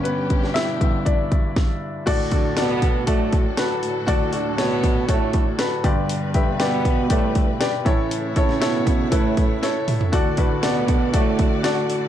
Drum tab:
CC |----------------|x---------------|----------------|----------------|
HH |x-x-x-x-x-x-----|o-o-o-o-o-o-o-o-|o-o-o-o-o-o-o-o-|o-o-o-o-o-o-o-o-|
SD |---oo-------o---|----o-------o---|----o-------o---|----o-------o---|
T2 |----------------|----------------|----------------|----------------|
FT |----------------|----------------|----------------|----------------|
BD |--o---o-o-o-o---|o-o---o-o-o-----|o-----o-o-o---o-|--o---o-o-o---o-|

CC |----------------|----------------|
HH |o-o-o-o-o-o-o-o-|o-o-o-o-o-o-o-o-|
SD |---oo-------o---|----o-------o---|
T2 |--------------o-|----------------|
FT |---------------o|----------------|
BD |--o---o-o-o-----|o-o---o-o-o-----|